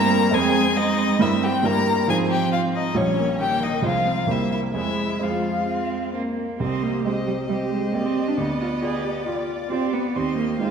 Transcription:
0.00 0.36 G2 medium
0.00 0.33 G3 medium
0.00 0.35 A#3 medium
0.00 0.36 A#3 soft
0.00 0.32 C4 soft
0.00 0.35 A#4 medium
0.00 0.32 C5 soft
0.00 0.35 A#5 medium
0.31 1.17 F2 medium
0.31 1.18 G#3 soft
0.31 0.76 G#3 medium
0.31 1.18 C4 soft
0.31 1.21 C4 medium
0.31 0.77 G#4 medium
0.31 1.18 C5 soft
0.31 0.78 G#5 medium
0.77 1.22 G#3 medium
0.77 1.21 D#4 medium
0.77 1.23 D#5 medium
1.19 1.61 G2 medium
1.19 1.62 G3 soft
1.19 1.64 G3 medium
1.19 1.67 C4 medium
1.19 1.63 E4 soft
1.19 1.29 E4 medium
1.19 1.63 A#4 soft
1.19 1.44 E5 medium
1.43 1.51 G4 medium
1.43 1.67 G5 medium
1.63 2.06 G2 soft
1.63 2.07 G3 soft
1.63 2.11 G3 medium
1.63 2.12 A#3 medium
1.63 2.07 E4 soft
1.63 2.07 A#4 soft
1.63 2.11 A#4 medium
1.63 2.09 A#5 medium
2.07 2.93 G#2 soft
2.07 2.93 F3 soft
2.07 2.96 F3 medium
2.07 2.97 C4 soft
2.07 2.93 F4 soft
2.07 2.30 G#4 medium
2.07 2.94 C5 soft
2.07 2.17 G#5 medium
2.31 2.52 G4 medium
2.31 2.52 G5 medium
2.52 2.60 F4 medium
2.52 2.60 F5 medium
2.76 3.00 D#4 medium
2.76 2.98 D#5 medium
2.94 3.81 A#1 soft
2.94 3.42 F3 soft
2.94 3.81 G3 soft
2.94 3.05 C#4 soft
2.94 3.81 F4 soft
2.94 3.82 C#5 soft
2.94 3.40 C#5 medium
2.98 3.43 C#4 medium
3.20 3.28 A#3 soft
3.40 3.86 D#3 soft
3.40 3.86 A#3 soft
3.40 3.63 G4 medium
3.40 3.64 G5 medium
3.63 3.88 D#4 soft
3.63 3.85 D#5 medium
3.82 4.25 C2 soft
3.82 4.31 F3 soft
3.82 4.27 G#3 soft
3.82 4.09 G#3 soft
3.82 4.27 F4 soft
3.82 4.27 C5 soft
3.86 4.30 F4 soft
3.86 4.33 F5 medium
4.07 4.29 C4 soft
4.27 4.73 C2 soft
4.27 4.75 G3 soft
4.27 4.73 A#3 soft
4.27 4.76 A#3 soft
4.27 4.39 E4 soft
4.27 4.73 G4 soft
4.27 4.73 C5 soft
4.31 4.51 E5 medium
4.52 4.61 E4 soft
4.52 4.60 E5 medium
4.74 5.18 F2 soft
4.74 5.18 G#3 soft
4.74 5.17 G#3 soft
4.74 6.12 G#3 soft
4.74 5.24 E4 soft
4.74 5.18 G#4 soft
4.74 5.19 C5 soft
4.74 5.24 E5 medium
5.19 6.55 F2 soft
5.19 5.65 F3 soft
5.19 6.56 G#3 soft
5.19 6.15 F4 soft
5.19 6.56 G#4 soft
5.19 6.56 C5 soft
5.19 6.15 F5 soft
5.68 6.14 C4 soft
6.13 6.60 A#3 soft
6.13 6.21 C4 soft
6.37 6.61 A#3 soft
6.60 7.04 C2 soft
6.60 6.84 C4 medium
6.60 7.46 G4 soft
6.60 7.03 C5 soft
6.60 7.03 D#5 soft
6.82 7.05 A#3 soft
7.05 7.13 G#3 medium
7.05 7.45 C4 soft
7.05 7.46 G4 soft
7.05 7.49 C5 soft
7.05 7.46 D#5 soft
7.05 7.50 D#5 soft
7.27 7.35 G3 soft
7.49 7.57 G3 medium
7.49 7.90 C4 soft
7.49 7.90 G4 soft
7.49 7.94 G4 soft
7.49 7.96 C5 soft
7.49 7.90 D#5 soft
7.49 9.30 D#5 soft
7.70 7.94 G#3 medium
7.93 8.07 A#3 medium
7.93 8.34 C4 soft
7.93 8.35 G4 soft
7.93 8.37 G4 soft
7.93 10.15 D5 soft
7.93 8.35 D#5 soft
8.05 8.29 C4 soft
8.28 8.39 D4 soft
8.37 8.81 D2 soft
8.37 9.49 B3 medium
8.37 8.46 G4 soft
8.61 8.69 F4 soft
8.82 9.23 F4 soft
8.82 9.23 G4 soft
8.82 9.06 G#4 soft
8.82 9.23 D5 soft
9.05 9.27 G4 soft
9.26 9.67 F4 soft
9.26 9.72 F4 soft
9.26 9.67 G4 soft
9.26 9.67 D5 soft
9.26 9.49 D5 soft
9.50 10.18 D5 soft
9.70 9.95 C4 medium
9.70 10.12 F4 soft
9.70 10.16 G4 soft
9.70 10.12 G4 soft
9.70 10.13 D5 soft
9.93 10.17 B3 soft
10.15 10.59 D#2 soft
10.15 10.37 C4 medium
10.15 10.60 G4 soft
10.15 10.71 C5 soft
10.15 10.60 D#5 soft
10.38 10.59 A#3 soft
10.59 10.71 G#3 medium
10.59 10.71 D#4 soft
10.59 10.71 F4 soft
10.59 10.71 G4 soft
10.59 10.71 C5 soft
10.59 10.71 F5 soft

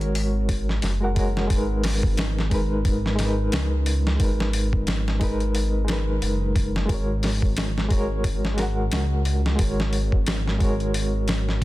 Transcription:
0.00 0.80 G#1 medium
0.00 1.00 G#3 medium
0.00 1.02 F#4 medium
0.00 1.03 A#4 medium
0.00 1.19 C#5 loud
0.00 closed hi-hat soft
0.15 open hi-hat medium
0.49 kick medium
0.49 open hi-hat medium
0.69 snare soft
0.82 1.48 F#1 medium
0.82 snare soft
0.82 open hi-hat medium
1.00 1.12 G#3 medium
1.00 1.13 F#4 medium
1.00 1.14 A#4 medium
1.00 1.14 F#5 loud
1.15 1.46 G#3 medium
1.15 1.47 F#4 medium
1.15 1.47 A#4 medium
1.15 kick medium
1.15 open hi-hat medium
1.19 1.48 C#5 medium
1.37 snare soft
1.47 3.50 G#1 medium
1.47 2.46 G#3 medium
1.47 2.48 D#4 medium
1.47 kick loud
1.47 open hi-hat medium
1.53 2.49 A#4 medium
1.53 2.51 B4 medium
1.84 snare medium
1.84 open hi-hat medium
2.03 kick medium
2.17 snare loud
2.17 open hi-hat medium
2.39 snare soft
2.50 3.14 G#3 medium
2.50 3.15 D#4 medium
2.50 3.16 A#4 medium
2.50 kick medium
2.50 open hi-hat medium
2.54 3.17 B4 loud
2.85 kick loud
2.85 open hi-hat medium
3.06 snare soft
3.16 4.15 G#3 medium
3.16 4.16 D#4 medium
3.16 open hi-hat medium
3.20 4.18 A#4 medium
3.20 snare soft
3.24 4.19 B4 loud
3.52 4.17 C#2 medium
3.52 snare loud
3.52 open hi-hat medium
3.86 open hi-hat medium
4.07 snare medium
4.16 5.16 G#3 medium
4.16 5.17 D#4 medium
4.16 kick loud
4.16 open hi-hat medium
4.20 6.19 G#1 medium
4.20 5.19 A#4 medium
4.25 5.20 B4 medium
4.40 snare medium
4.53 open hi-hat medium
4.73 kick medium
4.87 snare loud
4.87 open hi-hat medium
5.08 snare soft
5.20 5.83 G#3 medium
5.20 5.85 D#4 medium
5.20 5.86 A#4 medium
5.20 kick medium
5.20 open hi-hat medium
5.24 5.86 B4 loud
5.40 closed hi-hat soft
5.55 open hi-hat medium
5.84 6.84 G#3 medium
5.84 6.85 D#4 medium
5.84 open hi-hat medium
5.89 6.87 A#4 medium
5.89 6.88 B4 medium
5.89 snare loud
6.22 6.87 F#1 medium
6.22 open hi-hat medium
6.56 kick medium
6.56 open hi-hat medium
6.76 snare soft
6.85 7.85 G#3 medium
6.85 7.87 F#4 medium
6.85 kick loud
6.85 open hi-hat medium
6.90 8.89 G#1 medium
6.90 7.88 A#4 medium
6.94 7.89 C#5 medium
7.23 snare medium
7.23 open hi-hat medium
7.42 kick medium
7.57 snare loud
7.57 open hi-hat medium
7.78 snare soft
7.89 8.53 G#3 medium
7.89 8.54 F#4 medium
7.89 8.55 A#4 medium
7.89 kick medium
7.89 open hi-hat medium
7.93 8.56 C#5 loud
8.24 kick loud
8.24 open hi-hat medium
8.45 snare soft
8.54 9.54 G#3 medium
8.54 9.55 F#4 medium
8.54 open hi-hat medium
8.59 9.56 A#4 medium
8.59 9.58 F#5 medium
8.59 snare soft
8.92 9.56 C#2 medium
8.92 snare loud
8.92 open hi-hat medium
9.25 open hi-hat medium
9.46 snare medium
9.55 10.55 G#3 medium
9.55 10.56 F#4 medium
9.55 kick loud
9.55 open hi-hat medium
9.60 11.64 G#1 medium
9.60 10.58 A#4 medium
9.64 10.59 C#5 medium
9.80 snare medium
9.93 open hi-hat medium
10.12 kick medium
10.27 snare loud
10.27 open hi-hat medium
10.48 snare soft
10.59 11.23 G#3 medium
10.59 11.24 F#4 medium
10.59 11.25 A#4 medium
10.59 kick medium
10.59 open hi-hat medium
10.63 11.26 C#5 loud
10.80 closed hi-hat soft
10.94 open hi-hat medium
11.28 snare loud
11.28 open hi-hat medium
11.49 snare soft

